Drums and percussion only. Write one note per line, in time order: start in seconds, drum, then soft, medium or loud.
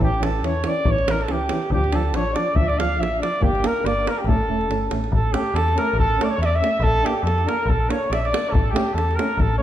0.02 davul low medium
0.14 davul high soft
0.23 davul high medium
0.44 davul high medium
0.64 davul high medium
0.85 davul low loud
0.98 davul high soft
1.08 davul high medium
1.21 davul high soft
1.28 davul high medium
1.49 davul high medium
1.63 davul high soft
1.72 davul low medium
1.84 davul high soft
1.92 davul high medium
2.14 davul high medium
2.36 davul high medium
2.56 davul low medium
2.69 davul high soft
2.80 davul high medium
3.03 davul high medium
3.23 davul high medium
3.42 davul low loud
3.55 davul high soft
3.64 davul high medium
3.86 davul high medium
4.07 davul high medium
4.29 davul low loud
4.61 davul high soft
4.71 davul high medium
4.91 davul high medium
5.04 davul high soft
5.13 davul low medium
5.34 davul high medium
5.56 davul high medium
5.68 davul high soft
5.78 davul high medium
5.99 davul low medium
6.21 davul high medium
6.43 davul high medium
6.56 davul high soft
6.64 davul high medium
6.84 davul low medium
7.06 davul high medium
7.27 davul high medium
7.38 davul high soft
7.49 davul high medium
7.69 davul low medium
7.90 davul high medium
8.13 davul high medium
8.25 davul high soft
8.34 davul high medium
8.55 davul low loud
8.76 davul high medium
8.98 davul high medium
9.11 davul high soft
9.19 davul high medium
9.40 davul low loud